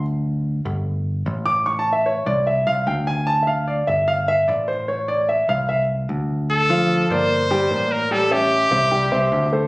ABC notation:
X:1
M:4/4
L:1/8
Q:1/4=149
K:Gdor
V:1 name="Grand piano"
z6 z d' | (3^c' a e ^c d e f g ^g | a [ef] d e f e d c | ^c d e f e z3 |
z [F,Ff]2 [B,Bd]2 [G,Gg] [B,Bd]2 | [G,Gg] [^C^ce]2 [=C=ce] [G,Gg] [Cce]2 [A,Ac] |]
V:2 name="Trumpet"
z8 | z8 | z8 | z8 |
A3 c4 B | A G6 z |]
V:3 name="Picked electric bass" clef=bass
D,,3 G,,,3 A,,,2- | A,,,3 C,,2 C,, D,,2- | D,,3 G,,,3 A,,,2- | A,,,3 C,,3 D,,2- |
D,,3 G,,,3 A,,,2- | A,,,3 C,,2 C,, D,,2 |]